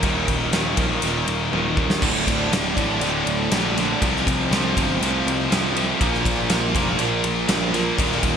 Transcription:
0.02 D#1 D#2 A#2 D#3 D#4 A#4 F5, kick, ride
0.28 D#1, kick, ride
0.53 D#1 D#2 A#2 D#3, snare, ride
0.77 A#1 D#2 A#2 D#3, kick, ride
1.02 D#1 D#2 A#2 D#3, ride
1.27 D#1, ride
1.52 D#1 D#2 A#2 D#3, high tom
1.76 D#2 A#2 D#3, kick
1.90 snare
2.02 D1 D2 A2 D3 D4 A4 D5, kick, crash
2.27 D1, kick, ride
2.51 D1 D2 A2 D3, snare, ride
2.76 A1 D2 A2 D3, kick, ride
3.01 D1 D2 A2 D3, ride
3.26 D1, ride
3.51 A#1 D2 A2 D3, snare, ride
3.77 D2 A2 D3, snare, ride
4.02 C2 F2 C3 F3 F4 C5 G5, kick, ride
4.16 snare
4.27 C2, kick, ride
4.51 C2 F2 C3 F3, snare, ride
4.76 G1 F2 C3 F3, kick, ride
5.01 C2 F2 C3 F3, ride
5.26 C2, ride
5.51 C2 F2 C3 F3, snare, ride
5.75 F2 C3 F3, ride
6.00 A#1 A#2 F3 A#3 F4, kick, ride
6.14 snare
6.25 A#1, kick, ride
6.50 A#1 A#2 F3 A#3, snare, ride
6.74 F1 A#2 F3 A#3, kick, ride
6.98 A#1 A#2 F3 A#3, ride
7.24 A#1, ride
7.47 A#1 A#2 F3 A#3, snare, ride
7.73 A#2 F3 A#3, snare, ride
7.97 D#1 D#2 A#2 D#3 D#4 A#4 F5, kick, ride
8.12 snare
8.23 D#1, kick, ride

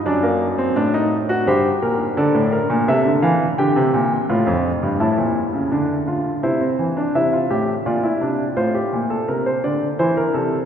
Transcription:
0.06 F#2 D4 D5
0.23 A#3
0.58 C4
0.76 A2 D4
0.94 D#4
1.29 F#4
1.47 G2 G4 C5
1.82 A#2 A#4
2.17 D3 A4 D5
2.35 A2
2.52 A#4
2.70 A#2
2.88 C3 A4 E5
3.05 D3
3.22 E3 F5
3.58 D3 G4 G5
3.76 C3
3.94 A#2
4.29 A2 F4
4.47 F2
4.83 G2
5.00 A2 E4 A5
5.18 A#2
5.54 C#3
5.72 D3 D4
6.07 F4
6.43 C3 E4 C5
6.61 C4
6.79 E3
6.97 D4
7.15 C3 E4 E5
7.33 F4
7.50 A2 G4
7.86 A#2 F4 D5
8.03 E4
8.21 C3 D4
8.57 A2 F4 C5
8.75 G4
8.93 A#2
9.10 A4
9.28 C3 A#4
9.46 C5
9.64 D3 D5
9.99 E3 E4 C5
10.17 A#4
10.34 C3 A4

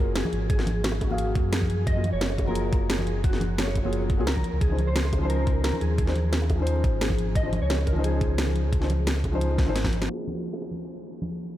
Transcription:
Already playing: F#1 F#3 A#3 F4 G#4 A#4
0.15 G#4, snare, closed hi-hat
0.24 high bongo, high conga
0.33 G#1, closed hi-hat
0.49 G#4, kick, closed hi-hat
0.57 F#3 A#3 F4 G#4, snare, high bongo
0.67 closed hi-hat, high conga
0.84 F#4, snare, closed hi-hat
0.92 high bongo
1.01 kick, closed hi-hat, high bongo
1.07 F#3 A#3, high conga
1.11 G#4 F5
1.18 closed hi-hat
1.27 high bongo
1.35 F#2, kick, closed hi-hat
1.52 G#4, snare, closed hi-hat
1.62 kick, high conga
1.70 closed hi-hat
1.87 D#5, kick, closed hi-hat
1.94 F#3 A#3 F4 G#4
2.04 closed hi-hat, high conga
2.13 F#1 C#5
2.21 snare, closed hi-hat
2.30 high bongo
2.38 kick, closed hi-hat, high bongo
2.44 F#3 A#3 A#4, high conga
2.48 F4 G#4
2.55 closed hi-hat
2.73 kick, closed hi-hat
2.89 G#4, snare, closed hi-hat
2.98 high bongo, high conga
3.07 closed hi-hat
3.24 F#4, kick, closed hi-hat
3.31 F#3 A#3 F4 G#4, snare, high bongo
3.41 closed hi-hat, high conga
3.58 C#5, snare, closed hi-hat
3.68 high bongo
3.75 kick, closed hi-hat, high bongo
3.83 F#3 A#3 F4 G#4, high conga
3.93 closed hi-hat
4.02 high bongo
4.10 kick, closed hi-hat
4.17 C#2 F#3 A#3 F4 G#4
4.27 A#4, snare, closed hi-hat
4.36 kick, high conga
4.44 closed hi-hat
4.53 C#2
4.61 C#2 G#4, kick, closed hi-hat
4.69 F3 C#4 D#4 C5
4.79 closed hi-hat, high conga
4.87 C5
4.96 snare, closed hi-hat
5.05 high bongo
5.13 kick, closed hi-hat, high bongo
5.18 F3 C#4 C5, high conga
5.23 D#4 C5
5.29 A#4, closed hi-hat
5.47 kick, closed hi-hat
5.64 A#4, snare, closed hi-hat
5.73 high bongo, high conga
5.81 D#2 G#4, closed hi-hat
5.98 kick, closed hi-hat
6.06 F3 C#4 D#4 C5, snare, high bongo
6.16 closed hi-hat, high conga
6.33 snare, closed hi-hat
6.42 high bongo
6.50 kick, closed hi-hat, high bongo
6.55 F3 C#4
6.60 D#4 C5, high conga
6.67 closed hi-hat
6.76 high bongo
6.84 G#1, kick, closed hi-hat
7.01 G#4, snare, closed hi-hat
7.10 kick, high conga
7.19 closed hi-hat
7.35 D#5, kick, closed hi-hat
7.43 F3 C#4 D#4 C5
7.53 closed hi-hat, high conga
7.62 C#2 C#5
7.70 snare, closed hi-hat
7.78 high bongo
7.87 A#4, kick, closed hi-hat, high bongo
7.93 F3 C#4, high conga
7.97 D#4 C5
8.04 G#4, closed hi-hat
8.21 kick, closed hi-hat
8.38 snare, closed hi-hat
8.47 high bongo, high conga
8.56 closed hi-hat
8.73 kick, closed hi-hat
8.80 F3 C#4 D#4 C5, snare, high bongo
8.90 closed hi-hat, high conga
9.07 snare, closed hi-hat
9.16 high bongo
9.24 kick, closed hi-hat, high bongo
9.32 F3 C#4 D#4 C5, high conga
9.41 closed hi-hat
9.51 high bongo
9.58 kick, snare, closed hi-hat
9.66 G#1 F3 C#4 D#4 C5
9.76 snare, closed hi-hat
9.84 kick, snare, high conga
9.93 G#1, closed hi-hat
10.02 snare
10.07 F#3 A#3
10.11 F4 G#4
10.28 high conga
10.53 high bongo
10.62 high bongo
10.71 high conga
11.22 high bongo, high conga

